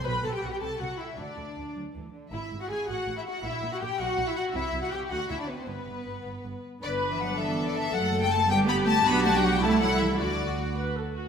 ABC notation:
X:1
M:6/8
L:1/16
Q:3/8=107
K:G
V:1 name="Violin section"
b2 a g f g a2 f2 e2 | d6 z6 | e3 f ^g2 f3 e f2 | e3 f g2 f3 e f2 |
e3 f g2 f2 e d B c | B8- B2 z2 | d3 e f2 e3 d e2 | f3 g a2 g2 b2 a2 |
b2 a g f g a2 f2 e2 | d6 z6 |]
V:2 name="Viola section"
B2 A G F G A2 F2 E2 | D6 z6 | E3 F ^G2 F3 E F2 | E3 F G2 F3 E F2 |
E3 F G2 F2 E D B, C | B,8- B,2 z2 | [B,D]12 | [A,A]6 [B,G]6 |
[DG]6 [EA]6 | F6 B2 A2 F2 |]
V:3 name="Violin section"
B2 A G F G A2 F2 E2 | D6 z6 | E3 F ^G2 F3 E F2 | E3 F G2 F3 E F2 |
E3 F G2 F2 E D B, C | B,8- B,2 z2 | B6 A6- | A6 G6 |
F6 E6 | F8- F z3 |]
V:4 name="Cello section" clef=bass
B,,2 B,,2 B,,2 C,2 C,2 z2 | D,2 D,2 D,2 F,2 E,2 D,2 | ^G,,2 G,,2 G,,2 A,,2 A,,2 z2 | ^A,,2 A,,2 A,,2 B,,2 B,,2 z2 |
C,2 C,2 C,2 D,2 D,2 z2 | G,,2 G,,2 G,,2 G,,2 G,,2 z2 | D,3 E, F,2 E,3 D, E,2 | F,3 G, A,2 G,2 B,2 A,2 |
B,2 A, G, F, G, A,2 F,2 E,2 | D,6 z6 |]
V:5 name="Double bass section" clef=bass
B,,,2 B,,,2 B,,,2 C,,2 C,,2 z2 | D,,2 D,,2 D,,2 D,,2 D,,2 z2 | ^G,,,2 G,,,2 G,,,2 A,,,2 A,,,2 z2 | ^A,,,2 A,,,2 A,,,2 B,,,2 B,,,2 z2 |
C,,2 C,,2 C,,2 D,,2 D,,2 z2 | G,,,2 G,,,2 G,,,2 G,,,2 G,,,2 z2 | G,,,12 | F,,,6 G,,,6 |
B,,,6 C,,6 | D,,8- D,,2 z2 |]